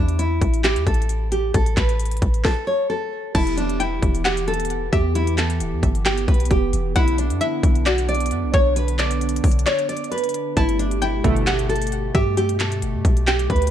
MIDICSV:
0, 0, Header, 1, 7, 480
1, 0, Start_track
1, 0, Key_signature, 1, "minor"
1, 0, Tempo, 451128
1, 1643, Time_signature, 4, 2, 24, 8
1, 14584, End_track
2, 0, Start_track
2, 0, Title_t, "Synth pluck"
2, 0, Program_c, 0, 84
2, 3561, Note_on_c, 0, 81, 100
2, 4013, Note_off_c, 0, 81, 0
2, 4042, Note_on_c, 0, 79, 82
2, 4493, Note_off_c, 0, 79, 0
2, 4519, Note_on_c, 0, 78, 93
2, 5199, Note_off_c, 0, 78, 0
2, 5240, Note_on_c, 0, 76, 87
2, 5470, Note_off_c, 0, 76, 0
2, 6443, Note_on_c, 0, 79, 94
2, 6894, Note_off_c, 0, 79, 0
2, 7401, Note_on_c, 0, 78, 108
2, 7853, Note_off_c, 0, 78, 0
2, 7882, Note_on_c, 0, 76, 87
2, 8334, Note_off_c, 0, 76, 0
2, 8362, Note_on_c, 0, 74, 82
2, 9040, Note_off_c, 0, 74, 0
2, 9082, Note_on_c, 0, 73, 81
2, 9310, Note_off_c, 0, 73, 0
2, 10282, Note_on_c, 0, 74, 92
2, 11200, Note_off_c, 0, 74, 0
2, 11242, Note_on_c, 0, 81, 98
2, 11694, Note_off_c, 0, 81, 0
2, 11722, Note_on_c, 0, 79, 88
2, 12174, Note_off_c, 0, 79, 0
2, 12202, Note_on_c, 0, 78, 90
2, 12880, Note_off_c, 0, 78, 0
2, 12924, Note_on_c, 0, 76, 89
2, 13151, Note_off_c, 0, 76, 0
2, 14123, Note_on_c, 0, 79, 84
2, 14574, Note_off_c, 0, 79, 0
2, 14584, End_track
3, 0, Start_track
3, 0, Title_t, "Nylon-string guitar"
3, 0, Program_c, 1, 24
3, 0, Note_on_c, 1, 62, 84
3, 175, Note_off_c, 1, 62, 0
3, 203, Note_on_c, 1, 64, 77
3, 654, Note_off_c, 1, 64, 0
3, 681, Note_on_c, 1, 67, 88
3, 894, Note_off_c, 1, 67, 0
3, 923, Note_on_c, 1, 69, 82
3, 1374, Note_off_c, 1, 69, 0
3, 1403, Note_on_c, 1, 67, 77
3, 1615, Note_off_c, 1, 67, 0
3, 1644, Note_on_c, 1, 69, 95
3, 1856, Note_off_c, 1, 69, 0
3, 1882, Note_on_c, 1, 71, 81
3, 2560, Note_off_c, 1, 71, 0
3, 2601, Note_on_c, 1, 69, 92
3, 2814, Note_off_c, 1, 69, 0
3, 2841, Note_on_c, 1, 73, 72
3, 3054, Note_off_c, 1, 73, 0
3, 3082, Note_on_c, 1, 69, 77
3, 3534, Note_off_c, 1, 69, 0
3, 3561, Note_on_c, 1, 64, 102
3, 3775, Note_off_c, 1, 64, 0
3, 3802, Note_on_c, 1, 62, 88
3, 4015, Note_off_c, 1, 62, 0
3, 4042, Note_on_c, 1, 64, 80
3, 4494, Note_off_c, 1, 64, 0
3, 4523, Note_on_c, 1, 67, 78
3, 4735, Note_off_c, 1, 67, 0
3, 4763, Note_on_c, 1, 69, 84
3, 5214, Note_off_c, 1, 69, 0
3, 5242, Note_on_c, 1, 67, 82
3, 5455, Note_off_c, 1, 67, 0
3, 5484, Note_on_c, 1, 64, 95
3, 5696, Note_off_c, 1, 64, 0
3, 5722, Note_on_c, 1, 69, 81
3, 6400, Note_off_c, 1, 69, 0
3, 6442, Note_on_c, 1, 67, 95
3, 6655, Note_off_c, 1, 67, 0
3, 6684, Note_on_c, 1, 71, 79
3, 6896, Note_off_c, 1, 71, 0
3, 6923, Note_on_c, 1, 67, 81
3, 7374, Note_off_c, 1, 67, 0
3, 7403, Note_on_c, 1, 64, 106
3, 7616, Note_off_c, 1, 64, 0
3, 7643, Note_on_c, 1, 62, 86
3, 7855, Note_off_c, 1, 62, 0
3, 7882, Note_on_c, 1, 64, 84
3, 8334, Note_off_c, 1, 64, 0
3, 8363, Note_on_c, 1, 66, 91
3, 8576, Note_off_c, 1, 66, 0
3, 8603, Note_on_c, 1, 74, 80
3, 9054, Note_off_c, 1, 74, 0
3, 9084, Note_on_c, 1, 73, 77
3, 9296, Note_off_c, 1, 73, 0
3, 9323, Note_on_c, 1, 71, 92
3, 9535, Note_off_c, 1, 71, 0
3, 9563, Note_on_c, 1, 74, 81
3, 10241, Note_off_c, 1, 74, 0
3, 10282, Note_on_c, 1, 73, 93
3, 10495, Note_off_c, 1, 73, 0
3, 10522, Note_on_c, 1, 74, 80
3, 10735, Note_off_c, 1, 74, 0
3, 10762, Note_on_c, 1, 71, 82
3, 11214, Note_off_c, 1, 71, 0
3, 11243, Note_on_c, 1, 64, 110
3, 11455, Note_off_c, 1, 64, 0
3, 11483, Note_on_c, 1, 62, 83
3, 11695, Note_off_c, 1, 62, 0
3, 11723, Note_on_c, 1, 64, 81
3, 12174, Note_off_c, 1, 64, 0
3, 12204, Note_on_c, 1, 67, 95
3, 12416, Note_off_c, 1, 67, 0
3, 12442, Note_on_c, 1, 69, 82
3, 12894, Note_off_c, 1, 69, 0
3, 12924, Note_on_c, 1, 67, 85
3, 13136, Note_off_c, 1, 67, 0
3, 13165, Note_on_c, 1, 67, 98
3, 13376, Note_off_c, 1, 67, 0
3, 13402, Note_on_c, 1, 69, 77
3, 14080, Note_off_c, 1, 69, 0
3, 14123, Note_on_c, 1, 67, 92
3, 14336, Note_off_c, 1, 67, 0
3, 14363, Note_on_c, 1, 71, 79
3, 14576, Note_off_c, 1, 71, 0
3, 14584, End_track
4, 0, Start_track
4, 0, Title_t, "Analog synth pad"
4, 0, Program_c, 2, 89
4, 3564, Note_on_c, 2, 52, 78
4, 3564, Note_on_c, 2, 67, 90
4, 3565, Note_on_c, 2, 59, 73
4, 7365, Note_off_c, 2, 52, 0
4, 7365, Note_off_c, 2, 67, 0
4, 7404, Note_on_c, 2, 50, 76
4, 7405, Note_on_c, 2, 62, 86
4, 11201, Note_off_c, 2, 59, 0
4, 11205, Note_off_c, 2, 50, 0
4, 11206, Note_off_c, 2, 62, 0
4, 11244, Note_on_c, 2, 47, 77
4, 11245, Note_on_c, 2, 67, 84
4, 11246, Note_on_c, 2, 57, 73
4, 14584, Note_off_c, 2, 47, 0
4, 14584, Note_off_c, 2, 57, 0
4, 14584, Note_off_c, 2, 67, 0
4, 14584, End_track
5, 0, Start_track
5, 0, Title_t, "Analog polysynth"
5, 0, Program_c, 3, 90
5, 11962, Note_on_c, 3, 38, 101
5, 11962, Note_on_c, 3, 47, 97
5, 11963, Note_on_c, 3, 57, 120
5, 12419, Note_off_c, 3, 38, 0
5, 12419, Note_off_c, 3, 47, 0
5, 12419, Note_off_c, 3, 57, 0
5, 14584, End_track
6, 0, Start_track
6, 0, Title_t, "808-style bass"
6, 0, Program_c, 4, 38
6, 0, Note_on_c, 4, 40, 102
6, 424, Note_off_c, 4, 40, 0
6, 441, Note_on_c, 4, 33, 108
6, 810, Note_on_c, 4, 40, 98
6, 826, Note_off_c, 4, 33, 0
6, 917, Note_off_c, 4, 40, 0
6, 922, Note_on_c, 4, 33, 106
6, 1614, Note_off_c, 4, 33, 0
6, 1642, Note_on_c, 4, 33, 110
6, 1873, Note_off_c, 4, 33, 0
6, 1882, Note_on_c, 4, 33, 106
6, 2343, Note_off_c, 4, 33, 0
6, 2361, Note_on_c, 4, 33, 107
6, 2593, Note_off_c, 4, 33, 0
6, 3563, Note_on_c, 4, 28, 109
6, 4254, Note_off_c, 4, 28, 0
6, 4282, Note_on_c, 4, 28, 111
6, 5204, Note_off_c, 4, 28, 0
6, 5243, Note_on_c, 4, 40, 103
6, 5962, Note_on_c, 4, 26, 103
6, 5978, Note_off_c, 4, 40, 0
6, 6090, Note_on_c, 4, 40, 104
6, 6106, Note_off_c, 4, 26, 0
6, 6197, Note_off_c, 4, 40, 0
6, 6202, Note_on_c, 4, 31, 108
6, 6663, Note_off_c, 4, 31, 0
6, 6682, Note_on_c, 4, 35, 104
6, 6913, Note_off_c, 4, 35, 0
6, 6923, Note_on_c, 4, 28, 109
6, 7153, Note_off_c, 4, 28, 0
6, 7163, Note_on_c, 4, 28, 98
6, 7393, Note_off_c, 4, 28, 0
6, 7402, Note_on_c, 4, 35, 107
6, 7770, Note_on_c, 4, 42, 102
6, 7786, Note_off_c, 4, 35, 0
6, 7878, Note_off_c, 4, 42, 0
6, 8122, Note_on_c, 4, 35, 111
6, 8844, Note_on_c, 4, 42, 100
6, 8860, Note_off_c, 4, 35, 0
6, 8971, Note_on_c, 4, 35, 102
6, 8987, Note_off_c, 4, 42, 0
6, 9078, Note_off_c, 4, 35, 0
6, 9083, Note_on_c, 4, 35, 98
6, 10005, Note_off_c, 4, 35, 0
6, 10043, Note_on_c, 4, 35, 110
6, 10273, Note_off_c, 4, 35, 0
6, 11244, Note_on_c, 4, 31, 114
6, 11935, Note_off_c, 4, 31, 0
6, 11962, Note_on_c, 4, 31, 107
6, 12884, Note_off_c, 4, 31, 0
6, 12924, Note_on_c, 4, 43, 100
6, 13643, Note_on_c, 4, 30, 104
6, 13659, Note_off_c, 4, 43, 0
6, 13771, Note_on_c, 4, 43, 98
6, 13787, Note_off_c, 4, 30, 0
6, 13878, Note_off_c, 4, 43, 0
6, 13882, Note_on_c, 4, 35, 108
6, 14344, Note_off_c, 4, 35, 0
6, 14362, Note_on_c, 4, 38, 106
6, 14584, Note_off_c, 4, 38, 0
6, 14584, End_track
7, 0, Start_track
7, 0, Title_t, "Drums"
7, 90, Note_on_c, 9, 42, 57
7, 197, Note_off_c, 9, 42, 0
7, 203, Note_on_c, 9, 42, 73
7, 309, Note_off_c, 9, 42, 0
7, 441, Note_on_c, 9, 36, 85
7, 442, Note_on_c, 9, 42, 71
7, 548, Note_off_c, 9, 36, 0
7, 548, Note_off_c, 9, 42, 0
7, 570, Note_on_c, 9, 42, 49
7, 676, Note_off_c, 9, 42, 0
7, 682, Note_on_c, 9, 39, 110
7, 682, Note_on_c, 9, 42, 75
7, 789, Note_off_c, 9, 39, 0
7, 789, Note_off_c, 9, 42, 0
7, 810, Note_on_c, 9, 42, 60
7, 916, Note_off_c, 9, 42, 0
7, 921, Note_on_c, 9, 42, 57
7, 922, Note_on_c, 9, 36, 84
7, 1002, Note_off_c, 9, 42, 0
7, 1002, Note_on_c, 9, 42, 55
7, 1028, Note_off_c, 9, 36, 0
7, 1082, Note_off_c, 9, 42, 0
7, 1082, Note_on_c, 9, 42, 55
7, 1162, Note_off_c, 9, 42, 0
7, 1162, Note_on_c, 9, 42, 59
7, 1268, Note_off_c, 9, 42, 0
7, 1402, Note_on_c, 9, 42, 76
7, 1509, Note_off_c, 9, 42, 0
7, 1642, Note_on_c, 9, 36, 123
7, 1642, Note_on_c, 9, 42, 77
7, 1748, Note_off_c, 9, 42, 0
7, 1749, Note_off_c, 9, 36, 0
7, 1769, Note_on_c, 9, 42, 66
7, 1875, Note_off_c, 9, 42, 0
7, 1882, Note_on_c, 9, 36, 95
7, 1882, Note_on_c, 9, 39, 96
7, 1883, Note_on_c, 9, 42, 73
7, 1989, Note_off_c, 9, 36, 0
7, 1989, Note_off_c, 9, 39, 0
7, 1989, Note_off_c, 9, 42, 0
7, 2010, Note_on_c, 9, 42, 56
7, 2116, Note_off_c, 9, 42, 0
7, 2122, Note_on_c, 9, 42, 60
7, 2186, Note_off_c, 9, 42, 0
7, 2186, Note_on_c, 9, 42, 61
7, 2250, Note_off_c, 9, 42, 0
7, 2250, Note_on_c, 9, 42, 59
7, 2306, Note_off_c, 9, 42, 0
7, 2306, Note_on_c, 9, 42, 62
7, 2362, Note_on_c, 9, 36, 88
7, 2363, Note_off_c, 9, 42, 0
7, 2363, Note_on_c, 9, 42, 72
7, 2468, Note_off_c, 9, 36, 0
7, 2469, Note_off_c, 9, 42, 0
7, 2490, Note_on_c, 9, 42, 49
7, 2596, Note_off_c, 9, 42, 0
7, 2602, Note_on_c, 9, 38, 95
7, 2603, Note_on_c, 9, 36, 108
7, 2709, Note_off_c, 9, 36, 0
7, 2709, Note_off_c, 9, 38, 0
7, 3562, Note_on_c, 9, 42, 77
7, 3562, Note_on_c, 9, 49, 100
7, 3563, Note_on_c, 9, 36, 126
7, 3669, Note_off_c, 9, 36, 0
7, 3669, Note_off_c, 9, 42, 0
7, 3669, Note_off_c, 9, 49, 0
7, 3690, Note_on_c, 9, 42, 70
7, 3797, Note_off_c, 9, 42, 0
7, 3804, Note_on_c, 9, 42, 72
7, 3910, Note_off_c, 9, 42, 0
7, 3931, Note_on_c, 9, 42, 56
7, 4037, Note_off_c, 9, 42, 0
7, 4044, Note_on_c, 9, 42, 69
7, 4151, Note_off_c, 9, 42, 0
7, 4282, Note_on_c, 9, 36, 87
7, 4283, Note_on_c, 9, 42, 72
7, 4389, Note_off_c, 9, 36, 0
7, 4390, Note_off_c, 9, 42, 0
7, 4411, Note_on_c, 9, 42, 51
7, 4518, Note_off_c, 9, 42, 0
7, 4523, Note_on_c, 9, 39, 110
7, 4523, Note_on_c, 9, 42, 78
7, 4629, Note_off_c, 9, 39, 0
7, 4630, Note_off_c, 9, 42, 0
7, 4651, Note_on_c, 9, 42, 57
7, 4757, Note_off_c, 9, 42, 0
7, 4763, Note_on_c, 9, 42, 41
7, 4827, Note_off_c, 9, 42, 0
7, 4827, Note_on_c, 9, 42, 52
7, 4890, Note_off_c, 9, 42, 0
7, 4890, Note_on_c, 9, 42, 61
7, 4946, Note_off_c, 9, 42, 0
7, 4946, Note_on_c, 9, 42, 67
7, 5002, Note_off_c, 9, 42, 0
7, 5002, Note_on_c, 9, 42, 62
7, 5109, Note_off_c, 9, 42, 0
7, 5242, Note_on_c, 9, 42, 76
7, 5243, Note_on_c, 9, 36, 109
7, 5349, Note_off_c, 9, 36, 0
7, 5349, Note_off_c, 9, 42, 0
7, 5483, Note_on_c, 9, 42, 78
7, 5589, Note_off_c, 9, 42, 0
7, 5610, Note_on_c, 9, 42, 69
7, 5717, Note_off_c, 9, 42, 0
7, 5723, Note_on_c, 9, 39, 96
7, 5723, Note_on_c, 9, 42, 72
7, 5830, Note_off_c, 9, 39, 0
7, 5830, Note_off_c, 9, 42, 0
7, 5850, Note_on_c, 9, 42, 56
7, 5956, Note_off_c, 9, 42, 0
7, 5963, Note_on_c, 9, 42, 72
7, 6069, Note_off_c, 9, 42, 0
7, 6202, Note_on_c, 9, 36, 87
7, 6203, Note_on_c, 9, 42, 72
7, 6308, Note_off_c, 9, 36, 0
7, 6310, Note_off_c, 9, 42, 0
7, 6330, Note_on_c, 9, 42, 52
7, 6437, Note_off_c, 9, 42, 0
7, 6443, Note_on_c, 9, 39, 111
7, 6443, Note_on_c, 9, 42, 79
7, 6549, Note_off_c, 9, 39, 0
7, 6549, Note_off_c, 9, 42, 0
7, 6570, Note_on_c, 9, 42, 60
7, 6676, Note_off_c, 9, 42, 0
7, 6682, Note_on_c, 9, 36, 81
7, 6683, Note_on_c, 9, 42, 41
7, 6746, Note_off_c, 9, 42, 0
7, 6746, Note_on_c, 9, 42, 52
7, 6789, Note_off_c, 9, 36, 0
7, 6810, Note_off_c, 9, 42, 0
7, 6810, Note_on_c, 9, 42, 58
7, 6867, Note_off_c, 9, 42, 0
7, 6867, Note_on_c, 9, 42, 70
7, 6923, Note_off_c, 9, 42, 0
7, 6923, Note_on_c, 9, 36, 97
7, 6923, Note_on_c, 9, 42, 61
7, 7029, Note_off_c, 9, 42, 0
7, 7030, Note_off_c, 9, 36, 0
7, 7162, Note_on_c, 9, 42, 79
7, 7269, Note_off_c, 9, 42, 0
7, 7402, Note_on_c, 9, 42, 78
7, 7403, Note_on_c, 9, 36, 121
7, 7508, Note_off_c, 9, 42, 0
7, 7509, Note_off_c, 9, 36, 0
7, 7529, Note_on_c, 9, 42, 70
7, 7636, Note_off_c, 9, 42, 0
7, 7642, Note_on_c, 9, 42, 74
7, 7749, Note_off_c, 9, 42, 0
7, 7771, Note_on_c, 9, 42, 57
7, 7877, Note_off_c, 9, 42, 0
7, 7883, Note_on_c, 9, 42, 70
7, 7989, Note_off_c, 9, 42, 0
7, 8122, Note_on_c, 9, 36, 89
7, 8123, Note_on_c, 9, 42, 70
7, 8229, Note_off_c, 9, 36, 0
7, 8230, Note_off_c, 9, 42, 0
7, 8250, Note_on_c, 9, 42, 52
7, 8357, Note_off_c, 9, 42, 0
7, 8363, Note_on_c, 9, 39, 110
7, 8364, Note_on_c, 9, 42, 75
7, 8470, Note_off_c, 9, 39, 0
7, 8470, Note_off_c, 9, 42, 0
7, 8491, Note_on_c, 9, 42, 59
7, 8597, Note_off_c, 9, 42, 0
7, 8603, Note_on_c, 9, 42, 40
7, 8666, Note_off_c, 9, 42, 0
7, 8666, Note_on_c, 9, 42, 52
7, 8729, Note_off_c, 9, 42, 0
7, 8729, Note_on_c, 9, 42, 61
7, 8786, Note_off_c, 9, 42, 0
7, 8786, Note_on_c, 9, 42, 72
7, 8842, Note_off_c, 9, 42, 0
7, 8842, Note_on_c, 9, 42, 61
7, 8948, Note_off_c, 9, 42, 0
7, 9082, Note_on_c, 9, 42, 75
7, 9083, Note_on_c, 9, 36, 108
7, 9188, Note_off_c, 9, 42, 0
7, 9190, Note_off_c, 9, 36, 0
7, 9322, Note_on_c, 9, 42, 79
7, 9429, Note_off_c, 9, 42, 0
7, 9450, Note_on_c, 9, 42, 68
7, 9556, Note_off_c, 9, 42, 0
7, 9562, Note_on_c, 9, 39, 94
7, 9562, Note_on_c, 9, 42, 74
7, 9669, Note_off_c, 9, 39, 0
7, 9669, Note_off_c, 9, 42, 0
7, 9690, Note_on_c, 9, 42, 57
7, 9796, Note_off_c, 9, 42, 0
7, 9802, Note_on_c, 9, 42, 62
7, 9883, Note_off_c, 9, 42, 0
7, 9883, Note_on_c, 9, 42, 64
7, 9962, Note_off_c, 9, 42, 0
7, 9962, Note_on_c, 9, 42, 60
7, 10043, Note_off_c, 9, 42, 0
7, 10043, Note_on_c, 9, 36, 85
7, 10043, Note_on_c, 9, 42, 61
7, 10043, Note_on_c, 9, 46, 73
7, 10124, Note_off_c, 9, 42, 0
7, 10124, Note_on_c, 9, 42, 58
7, 10149, Note_off_c, 9, 36, 0
7, 10149, Note_off_c, 9, 46, 0
7, 10204, Note_off_c, 9, 42, 0
7, 10204, Note_on_c, 9, 42, 61
7, 10284, Note_off_c, 9, 42, 0
7, 10284, Note_on_c, 9, 39, 110
7, 10284, Note_on_c, 9, 42, 79
7, 10390, Note_off_c, 9, 39, 0
7, 10390, Note_off_c, 9, 42, 0
7, 10412, Note_on_c, 9, 42, 58
7, 10518, Note_off_c, 9, 42, 0
7, 10524, Note_on_c, 9, 42, 68
7, 10604, Note_off_c, 9, 42, 0
7, 10604, Note_on_c, 9, 42, 54
7, 10683, Note_off_c, 9, 42, 0
7, 10683, Note_on_c, 9, 42, 39
7, 10764, Note_off_c, 9, 42, 0
7, 10764, Note_on_c, 9, 42, 50
7, 10828, Note_off_c, 9, 42, 0
7, 10828, Note_on_c, 9, 42, 51
7, 10891, Note_off_c, 9, 42, 0
7, 10891, Note_on_c, 9, 42, 53
7, 10948, Note_off_c, 9, 42, 0
7, 10948, Note_on_c, 9, 42, 52
7, 11005, Note_off_c, 9, 42, 0
7, 11005, Note_on_c, 9, 42, 77
7, 11111, Note_off_c, 9, 42, 0
7, 11244, Note_on_c, 9, 36, 123
7, 11244, Note_on_c, 9, 42, 79
7, 11350, Note_off_c, 9, 36, 0
7, 11350, Note_off_c, 9, 42, 0
7, 11372, Note_on_c, 9, 42, 70
7, 11478, Note_off_c, 9, 42, 0
7, 11484, Note_on_c, 9, 42, 74
7, 11591, Note_off_c, 9, 42, 0
7, 11612, Note_on_c, 9, 42, 57
7, 11718, Note_off_c, 9, 42, 0
7, 11725, Note_on_c, 9, 42, 73
7, 11831, Note_off_c, 9, 42, 0
7, 11963, Note_on_c, 9, 36, 91
7, 11964, Note_on_c, 9, 42, 70
7, 12069, Note_off_c, 9, 36, 0
7, 12070, Note_off_c, 9, 42, 0
7, 12091, Note_on_c, 9, 42, 51
7, 12198, Note_off_c, 9, 42, 0
7, 12204, Note_on_c, 9, 39, 106
7, 12204, Note_on_c, 9, 42, 76
7, 12310, Note_off_c, 9, 39, 0
7, 12310, Note_off_c, 9, 42, 0
7, 12332, Note_on_c, 9, 42, 58
7, 12438, Note_off_c, 9, 42, 0
7, 12444, Note_on_c, 9, 42, 41
7, 12508, Note_off_c, 9, 42, 0
7, 12508, Note_on_c, 9, 42, 50
7, 12571, Note_off_c, 9, 42, 0
7, 12571, Note_on_c, 9, 42, 62
7, 12628, Note_off_c, 9, 42, 0
7, 12628, Note_on_c, 9, 42, 71
7, 12684, Note_off_c, 9, 42, 0
7, 12684, Note_on_c, 9, 42, 58
7, 12790, Note_off_c, 9, 42, 0
7, 12924, Note_on_c, 9, 36, 112
7, 12924, Note_on_c, 9, 42, 76
7, 13030, Note_off_c, 9, 36, 0
7, 13030, Note_off_c, 9, 42, 0
7, 13164, Note_on_c, 9, 42, 79
7, 13271, Note_off_c, 9, 42, 0
7, 13291, Note_on_c, 9, 42, 68
7, 13397, Note_off_c, 9, 42, 0
7, 13404, Note_on_c, 9, 39, 97
7, 13404, Note_on_c, 9, 42, 72
7, 13510, Note_off_c, 9, 39, 0
7, 13510, Note_off_c, 9, 42, 0
7, 13530, Note_on_c, 9, 42, 56
7, 13637, Note_off_c, 9, 42, 0
7, 13644, Note_on_c, 9, 42, 73
7, 13750, Note_off_c, 9, 42, 0
7, 13882, Note_on_c, 9, 36, 88
7, 13883, Note_on_c, 9, 42, 72
7, 13989, Note_off_c, 9, 36, 0
7, 13990, Note_off_c, 9, 42, 0
7, 14010, Note_on_c, 9, 42, 51
7, 14117, Note_off_c, 9, 42, 0
7, 14122, Note_on_c, 9, 39, 112
7, 14122, Note_on_c, 9, 42, 79
7, 14228, Note_off_c, 9, 39, 0
7, 14228, Note_off_c, 9, 42, 0
7, 14250, Note_on_c, 9, 42, 57
7, 14356, Note_off_c, 9, 42, 0
7, 14362, Note_on_c, 9, 36, 84
7, 14362, Note_on_c, 9, 42, 40
7, 14426, Note_off_c, 9, 42, 0
7, 14426, Note_on_c, 9, 42, 51
7, 14469, Note_off_c, 9, 36, 0
7, 14490, Note_off_c, 9, 42, 0
7, 14490, Note_on_c, 9, 42, 62
7, 14546, Note_off_c, 9, 42, 0
7, 14546, Note_on_c, 9, 42, 69
7, 14584, Note_off_c, 9, 42, 0
7, 14584, End_track
0, 0, End_of_file